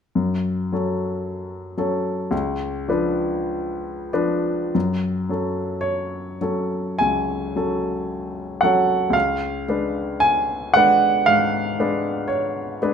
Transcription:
grand piano
0.15 F#2
0.72 F#3 C#4 A4
1.77 F#3 C#4 A4
2.31 C#2
2.88 F3 D4 B4
4.13 F3 D4 B4
4.75 F#2
5.29 F#3 C#4 A4
5.81 C#5
6.41 F#3 C#4 A4
6.99 C#2 G#5
7.56 F#3 C#4 A4
8.61 F#3 C#4 A4 F#5
9.10 C#2 F5
9.68 G#3 D4 B4
10.20 G#5
10.74 G#3 D4 B4 F#5
11.26 G#2 F5
11.79 G#3 D4 B4
12.28 C#5
12.82 G#3 D4 B4

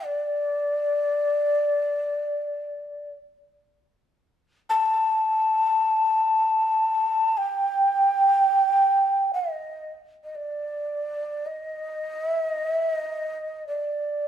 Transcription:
shakuhachi
0.04 D5
4.69 A5
7.37 G5
9.34 D#5
10.24 D#5
10.35 D5
11.46 D#5
12.25 E5
12.47 D#5
12.70 E5
12.92 D#5
13.68 D5

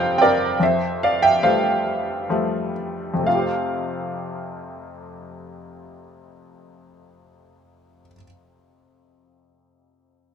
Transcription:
upright piano
Already playing: F1 F2 C3 F3 G3 C4 A4 C5 F5 G5
0.18 C4 D5 G5
0.22 A#4
0.60 F2 C5 E5
1.03 D5 F5
1.22 E5 G5
1.43 F3 G3 A3 C5 F5
2.29 F3 G3 A3
3.14 F2
3.19 C3
3.24 A3 F5
3.29 F4
3.35 G4
3.39 C5

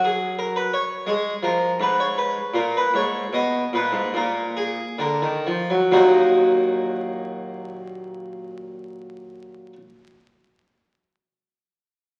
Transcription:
harpsichord
Already playing: F#3
0.05 G#4
0.39 A#4
0.56 B4
0.74 C#5
1.06 G#3 G#4
1.43 F3 A#4
1.80 G#2 B4
2.00 C#5
2.18 B4
2.54 A#2 A#4
2.77 B4
2.94 G#2 C#5
3.33 B2 D#5
3.73 A#2 B4
3.92 G#2
4.14 A#2 A#4
4.57 G#4
4.99 D3 A#4
5.22 D#3
5.47 F3
5.70 F#3
5.92 D#2 A#2 F#3 A#3 D#4 F#4 D#5

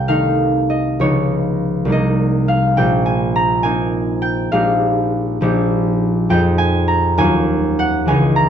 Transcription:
harp
Already playing: C2 C5 D#5 G5
0.08 D#3 A3 D#4 F5
0.70 D#5
1.00 C#2 F3 B3 D#4 C#5
1.85 C2 G3
1.89 A#3 D#4 D#5
2.48 F5
2.77 A#1 G5
3.06 G#5
3.36 A#5
3.63 A#3 C4 D#4 G#5
4.22 G5
4.52 A#1 G#3 D#4 G4 F5
5.41 A#1 F3 D#4 G4
6.29 F2 F3 D#4 G#4 G5
6.58 G#5
6.88 A#5
7.18 D#2 F#3 C#4 F4 G#5
7.79 F#5
8.06 C#2 E3 C#4 G#5
8.11 D#4
8.36 A#5

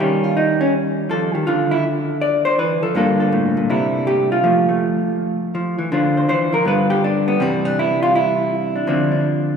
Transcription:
hollow-body jazz guitar
0.00 D#3 G3 C#4 G4
0.24 F4
0.37 D#4
0.61 C#4
1.10 F3 A4
1.34 D#3 G4
1.47 D3 F4
1.71 E4
2.21 D5
2.45 C5
2.59 E3 B4
2.83 F3 A4
2.95 G2 D3 A#3 F4 A4
3.20 A4
3.32 A2
3.57 A#2
3.70 C3 G3 E4
4.07 G4
4.32 F4
4.44 F3 A3
4.69 A3
5.55 F3
5.79 E3
5.92 D3 D4 F4 C5
6.17 C5
6.29 E3 C5
6.53 F3 A#4
6.65 G2 D3 B3 F4 B4
6.90 G4
7.04 D4
7.28 B3
7.40 C3 E3 G3 C4
7.65 D4
7.79 E4
8.03 F4
8.15 E4
8.76 D4
8.87 D3 F3 C4 D4
9.12 D4

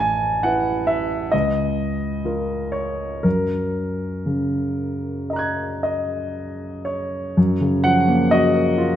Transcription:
grand piano
Already playing: A1 A5
0.00 G#5
0.43 E4 B4 F#5
0.87 E5
1.32 C#2 D#5
2.25 F4 A#4
2.72 C#5
3.23 F#2 A#4
4.26 C#3
5.30 D#5 A#5
5.36 F#6 G#6
5.83 D#5
6.85 C#5
7.37 F#2
7.61 C#3
7.84 F3 F#5
8.08 A#3
8.31 F#4 D#5
8.55 A#4
8.78 F4

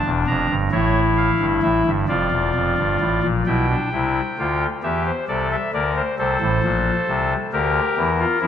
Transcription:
pipe organ
Already playing: D4
0.05 E1 E2
0.27 F1 F2 A#5
0.49 G1 G2
0.72 A1 A2 E4 C#5
1.17 F5
1.39 G1 G2
1.62 A1 A2 E5
1.85 G1 G2
2.08 F1 F2 F4 D5
2.31 E1 E2
2.54 F1 F2
2.78 G1 G2
3.00 A1 A2
3.23 A#1 A#2
3.46 B1 B2 E4 G5
3.70 D4
3.93 C2 C3 E4
4.38 D2 D3 F4
4.83 E2 E3 G4 E5
5.05 C5
5.28 C2 C3 A4 D5
5.52 E5
5.73 D2 D3 A#4 D5
5.96 C5
6.18 C2 C3 A4 C5
6.41 A1 A2
6.63 A#1 A#2
7.08 C2 C3
7.52 D2 D3 G4 A#4
7.97 E2 E3
8.20 F4
8.41 F2 F3 E4

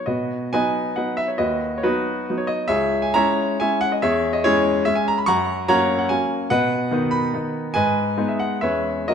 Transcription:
grand piano
0.06 B2 F#4 B4 D#5
0.53 F#3 B3 D#4 B4 D#5 G#5
0.96 F#3 B3 D#4 B4 D#5 F#5
1.17 E5
1.28 C#5
1.38 D#2 F#4 B4 D#5
1.78 C#5
1.83 F#3 B3 D#4 F#4 B4
2.30 F#3 B3 D#4
2.38 C#5
2.47 D#5
2.68 C#2 G#4 C#5 E5
3.02 G#5
3.14 G#3 C#4 E4 C#5 E5 A#5
3.60 G#3 C#4 E4 C#5 E5 G#5
3.81 F#5
3.92 D#5
4.02 E2 G#4 C#5 E5
4.33 D#5
4.44 G#3 C#4 E4 G#4 C#5
4.85 G#3 C#4 E5
4.95 G#5
5.08 A#5
5.18 B5
5.26 F#2 F#5 A#5 C#6
5.68 F#3 A#3 C#4 C#5 F#5 A#5
5.99 F#5
6.09 F#3 A#3 C#4 G#5
6.50 B2 B4 D#5 F#5
6.91 D#3 B3 D#4
7.11 B5
7.34 D#3 B3 D#4
7.74 G#2 B4 D#5 G#5
8.17 G#3 B3 D#4
8.28 E5
8.39 F#5
8.61 E2 G#3 B3 C#4 B4 C#5 E5
9.08 F#3 A#3 C#4 F#4 A#4 D#5

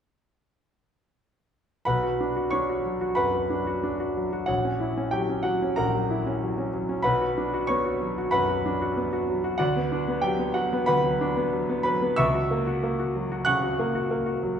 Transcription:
grand piano
1.85 B1 B4 F#5 B5
2.03 F#4
2.21 D4
2.36 F#4
2.51 D4 C#5 C#6
2.70 F#4
2.85 F#3
3.01 F#4
3.15 F#2 B4 F#5 B5
3.34 F#4
3.50 D4
3.67 F#4
3.84 D4
4.00 F#4
4.16 F#3
4.33 F#4
4.46 A#1 F#4 C#5 F#5
4.65 C#4
4.80 E4
4.98 C#4
5.11 F#3 G4 G5
5.29 C#4
5.43 F#3 F#4 F#5
5.62 C#4
5.76 A#1 A#4 F#5 A#5
5.94 F#3
6.10 E4
6.26 C#4
6.43 F#3
6.58 C#4
6.73 F#3
6.89 C#4
7.02 B1 B4 F#5 B5
7.21 F#4
7.38 D4
7.54 F#4
7.67 B3 C#5 C#6
7.85 F#4
8.01 F#3
8.18 F#4
8.31 F#2 B4 F#5 B5
8.49 F#4
8.66 D4
8.82 F#4
8.97 B3
9.13 F#4
9.29 F#3
9.44 F#4
9.58 D2 F#4 D5 F#5
9.76 B3
9.92 D4
10.08 B3
10.22 F#3 G4 G5
10.39 B3
10.54 F#3 F#4 F#5
10.73 B3
10.86 D2 B4 F#5 B5
11.05 F#3
11.21 D4
11.37 B3
11.53 F#3
11.70 B3
11.83 F#3 B4 B5
12.02 B3
12.16 C#2 E5 C#6 E6
12.35 F#4
12.51 A#3
12.67 F#4
12.83 A#3
13.00 F#4
13.15 F#3
13.32 F#4
13.45 C#3 F#5 C#6 F#6
13.63 F#4
13.79 A#3
13.95 F#4
14.11 A#3
14.26 F#4
14.43 F#3

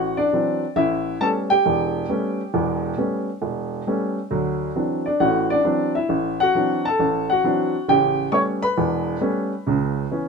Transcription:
upright piano
Already playing: A1 F#4 F#5
0.17 D4 D5
0.33 E3 F#3 C4 D4
0.76 A1 E4 E5
1.20 G3 A3 B3 C#4 A4 A5
1.50 G4 G5
1.66 E1 E2
2.09 G3 A3 B3 C#4
2.54 E1 E2
2.97 G3 A3 B3 C#4
3.42 E1
3.87 G3 A3 B3 C#4
4.31 D2 F#3
4.76 E3 F#3 C4 D4
5.06 D4 D5
5.20 A1 A2 F#4 F#5
5.50 D4 D5
5.65 E3 F#3 C4 D4
5.95 E4 E5
6.09 A1
6.40 F#4 F#5
6.55 E3 F#3 C4 D4
6.85 A4 A5
6.99 A1
7.30 F#4 F#5
7.44 E3 F#3 C4 D4
7.88 A1 C#3 G4 G5
8.32 G3 A3 B3 C#4 C#5 C#6
8.62 B4 B5
8.78 E1 E2
9.21 G3 A3 B3 C#4
9.67 C#2 C#3
10.11 E3 B3 C#4

